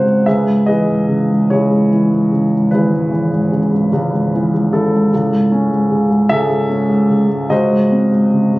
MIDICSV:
0, 0, Header, 1, 2, 480
1, 0, Start_track
1, 0, Key_signature, 4, "minor"
1, 0, Tempo, 823045
1, 152, Time_signature, 6, 3, 24, 8
1, 1590, Tempo, 795756
1, 3990, Tempo, 814111
1, 5103, End_track
2, 0, Start_track
2, 0, Title_t, "Grand piano"
2, 0, Program_c, 0, 0
2, 0, Control_c, 0, 64, 127
2, 0, Note_on_c, 0, 37, 45
2, 0, Note_on_c, 0, 44, 38
2, 0, Note_on_c, 0, 49, 38
2, 0, Note_on_c, 0, 60, 37
2, 0, Note_on_c, 0, 72, 62
2, 0, Note_on_c, 0, 78, 73
2, 26, Note_off_c, 0, 44, 0
2, 26, Note_on_c, 0, 44, 36
2, 137, Note_off_c, 0, 37, 0
2, 141, Note_off_c, 0, 60, 0
2, 146, Note_off_c, 0, 44, 0
2, 146, Note_off_c, 0, 49, 0
2, 153, Note_on_c, 0, 76, 77
2, 158, Note_off_c, 0, 72, 0
2, 160, Note_off_c, 0, 78, 0
2, 160, Control_c, 0, 64, 0
2, 160, Note_on_c, 0, 37, 56
2, 161, Note_on_c, 0, 68, 55
2, 164, Note_on_c, 0, 71, 51
2, 259, Control_c, 0, 64, 127
2, 276, Note_on_c, 0, 44, 39
2, 387, Note_on_c, 0, 75, 72
2, 388, Note_off_c, 0, 68, 0
2, 389, Note_off_c, 0, 71, 0
2, 396, Note_on_c, 0, 68, 55
2, 398, Note_on_c, 0, 71, 57
2, 400, Note_on_c, 0, 52, 43
2, 402, Note_off_c, 0, 76, 0
2, 510, Note_off_c, 0, 44, 0
2, 519, Note_on_c, 0, 44, 43
2, 632, Note_on_c, 0, 49, 44
2, 754, Note_off_c, 0, 44, 0
2, 763, Note_on_c, 0, 44, 40
2, 850, Note_off_c, 0, 75, 0
2, 869, Note_off_c, 0, 37, 0
2, 876, Note_on_c, 0, 73, 71
2, 878, Note_on_c, 0, 37, 54
2, 884, Note_off_c, 0, 68, 0
2, 891, Note_on_c, 0, 64, 49
2, 893, Note_on_c, 0, 68, 50
2, 987, Note_off_c, 0, 44, 0
2, 996, Note_on_c, 0, 44, 42
2, 1095, Note_off_c, 0, 71, 0
2, 1108, Note_off_c, 0, 52, 0
2, 1117, Note_on_c, 0, 52, 45
2, 1225, Note_off_c, 0, 44, 0
2, 1233, Note_on_c, 0, 44, 38
2, 1342, Note_off_c, 0, 49, 0
2, 1351, Note_on_c, 0, 49, 43
2, 1465, Note_off_c, 0, 44, 0
2, 1474, Note_on_c, 0, 44, 43
2, 1565, Note_off_c, 0, 73, 0
2, 1572, Note_off_c, 0, 64, 0
2, 1574, Note_off_c, 0, 68, 0
2, 1580, Note_on_c, 0, 71, 64
2, 1582, Note_on_c, 0, 32, 56
2, 1598, Note_on_c, 0, 68, 44
2, 1599, Note_on_c, 0, 64, 49
2, 1695, Note_off_c, 0, 44, 0
2, 1704, Note_on_c, 0, 44, 43
2, 1812, Note_off_c, 0, 52, 0
2, 1821, Note_on_c, 0, 52, 46
2, 1940, Note_off_c, 0, 44, 0
2, 1949, Note_on_c, 0, 44, 46
2, 2061, Note_off_c, 0, 49, 0
2, 2070, Note_on_c, 0, 49, 42
2, 2105, Note_off_c, 0, 71, 0
2, 2184, Note_off_c, 0, 44, 0
2, 2193, Note_on_c, 0, 44, 39
2, 2291, Note_off_c, 0, 37, 0
2, 2296, Note_off_c, 0, 64, 0
2, 2296, Note_off_c, 0, 68, 0
2, 2315, Note_on_c, 0, 37, 61
2, 2421, Note_off_c, 0, 44, 0
2, 2430, Note_on_c, 0, 44, 45
2, 2551, Note_off_c, 0, 52, 0
2, 2560, Note_on_c, 0, 52, 45
2, 2674, Note_off_c, 0, 44, 0
2, 2683, Note_on_c, 0, 44, 41
2, 2787, Note_off_c, 0, 49, 0
2, 2796, Note_on_c, 0, 49, 47
2, 2798, Note_on_c, 0, 69, 71
2, 2800, Note_on_c, 0, 64, 51
2, 2911, Note_off_c, 0, 44, 0
2, 2920, Note_on_c, 0, 44, 43
2, 3007, Note_off_c, 0, 32, 0
2, 3013, Note_off_c, 0, 37, 0
2, 3022, Note_off_c, 0, 52, 0
2, 3027, Note_off_c, 0, 49, 0
2, 3033, Note_off_c, 0, 44, 0
2, 3042, Control_c, 0, 64, 0
2, 3045, Note_on_c, 0, 37, 57
2, 3148, Control_c, 0, 64, 127
2, 3159, Note_on_c, 0, 44, 40
2, 3275, Note_on_c, 0, 61, 46
2, 3381, Note_off_c, 0, 44, 0
2, 3390, Note_on_c, 0, 44, 49
2, 3505, Note_on_c, 0, 49, 50
2, 3619, Note_off_c, 0, 44, 0
2, 3628, Note_on_c, 0, 44, 43
2, 3726, Note_off_c, 0, 69, 0
2, 3727, Note_off_c, 0, 64, 0
2, 3738, Note_off_c, 0, 37, 0
2, 3742, Note_on_c, 0, 76, 92
2, 3747, Note_on_c, 0, 37, 59
2, 3757, Note_on_c, 0, 69, 64
2, 3758, Note_on_c, 0, 68, 62
2, 3857, Note_off_c, 0, 44, 0
2, 3866, Note_on_c, 0, 44, 45
2, 3974, Note_off_c, 0, 61, 0
2, 3983, Note_on_c, 0, 61, 46
2, 4089, Note_off_c, 0, 44, 0
2, 4098, Note_on_c, 0, 44, 46
2, 4211, Note_off_c, 0, 49, 0
2, 4220, Note_on_c, 0, 49, 49
2, 4326, Note_off_c, 0, 44, 0
2, 4335, Note_on_c, 0, 44, 44
2, 4440, Note_off_c, 0, 76, 0
2, 4444, Note_off_c, 0, 37, 0
2, 4447, Note_off_c, 0, 68, 0
2, 4447, Note_off_c, 0, 69, 0
2, 4449, Note_off_c, 0, 61, 0
2, 4455, Note_on_c, 0, 37, 61
2, 4456, Note_off_c, 0, 49, 0
2, 4457, Note_off_c, 0, 44, 0
2, 4458, Note_on_c, 0, 75, 76
2, 4467, Note_on_c, 0, 66, 55
2, 4470, Note_on_c, 0, 72, 57
2, 4475, Control_c, 0, 64, 0
2, 4580, Note_on_c, 0, 44, 40
2, 4596, Control_c, 0, 64, 127
2, 4700, Note_on_c, 0, 60, 42
2, 4812, Note_off_c, 0, 44, 0
2, 4820, Note_on_c, 0, 44, 48
2, 4948, Note_on_c, 0, 49, 43
2, 5057, Note_off_c, 0, 44, 0
2, 5066, Note_on_c, 0, 44, 40
2, 5103, Note_off_c, 0, 37, 0
2, 5103, Note_off_c, 0, 44, 0
2, 5103, Note_off_c, 0, 49, 0
2, 5103, Note_off_c, 0, 60, 0
2, 5103, Note_off_c, 0, 66, 0
2, 5103, Note_off_c, 0, 72, 0
2, 5103, Note_off_c, 0, 75, 0
2, 5103, End_track
0, 0, End_of_file